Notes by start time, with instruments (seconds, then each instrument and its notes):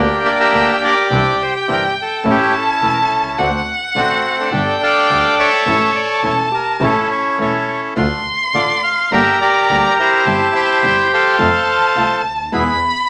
Already playing: double bass D2, bandoneon A#3 D4 G4, violin G5
0.25 bandoneon E5
0.31 bandoneon D5
0.40 bandoneon G4 A#4 E5
0.52 double bass D2, nylon-string guitar D3 A#3 D4 G4, bandoneon A#3 D4 G4
0.84 bandoneon G4 D5
1.09 double bass C2, nylon-string guitar C3 E3 G3 D4 E4, bandoneon C4 D4 E4, violin G5
1.42 bandoneon C5
1.68 double bass G1, nylon-string guitar C3 E3 G3 D4 E4, bandoneon C4 D4 E4 A#4
2.02 bandoneon A4
2.24 double bass A1, nylon-string guitar E3 A3 C#4 E4, bandoneon A3 C#4 E4, violin A5
2.29 bandoneon C#4 E4 G4
2.58 bandoneon A4
2.81 double bass E1, nylon-string guitar E3 A3 C#4 E4, bandoneon A3 C#4 E4
2.88 bandoneon A4
2.93 bandoneon A#4
3.01 bandoneon A4
3.10 double bass C2
3.38 double bass D2, nylon-string guitar D3 A3 C4 F#4, bandoneon C4 D4 F#4, violin F#5
3.95 double bass A1, nylon-string guitar D3 A3 C4 F#4, bandoneon A3 C4 D4 F#4
4.40 bandoneon D4 A4
4.51 double bass G1, nylon-string guitar D3 G3 D4 G4, bandoneon A3 D4 G4, violin G5
4.83 bandoneon A4 D5 F5
5.09 double bass D2, nylon-string guitar D3 G3 D4 G4, bandoneon A3 D4 G4
5.39 bandoneon A4 C#5 E5
5.66 double bass A1, nylon-string guitar E3 A3 C#4 E4, bandoneon A3 C#4 E4, violin A5
5.96 bandoneon D5
6.23 double bass E1, nylon-string guitar E3 A3 C#4 E4, bandoneon A3 C#4 E4 C#5, hollow-body jazz guitar E4
6.52 hollow-body jazz guitar G4, bandoneon A#4
6.80 double bass A1, nylon-string guitar E3 A3 C#4 E4, bandoneon A3 C#4 E4 A4, hollow-body jazz guitar A4
7.11 bandoneon C#5
7.38 double bass E1, nylon-string guitar E3 A3 C#4 E4, bandoneon A3 C#4 E4 A4 C#5
7.57 hollow-body jazz guitar G4
7.95 double bass D2, nylon-string guitar D3 A3 D4 F4, bandoneon A3 D4 F4, violin C6
8.54 double bass A1, nylon-string guitar D3 A3 D4 F4, bandoneon A3 D4 F4 D5
8.83 bandoneon F5
9.11 double bass G1, nylon-string guitar D3 G3 A#3 D4 G4, bandoneon A#3 D4 G4 A#4 E5, violin A#5
9.41 bandoneon G4 A#4 D5
9.68 double bass D2, nylon-string guitar D3 G3 A#3 D4 G4, bandoneon A#3 D4 G4
9.99 bandoneon E4 G4 C5
10.26 double bass G1, nylon-string guitar G3 C4 E4, bandoneon C4 E4 G4, violin A5
10.55 bandoneon G4 C5 E5
10.83 double bass G1, nylon-string guitar G3 C4 E4, bandoneon C4 E4 G4, violin G5
11.13 bandoneon A4 C5 F5
11.39 double bass F2, nylon-string guitar C3 F3 A3 C4 F4, bandoneon C4 F4 A4, violin A5
11.95 double bass C2, nylon-string guitar C3 F3 A3 C4 F4, bandoneon C4 F4 A4
12.25 double bass D2
12.52 double bass E2, nylon-string guitar B2 E3 G#3 B3 E4, bandoneon B3 E4 G#4, violin B5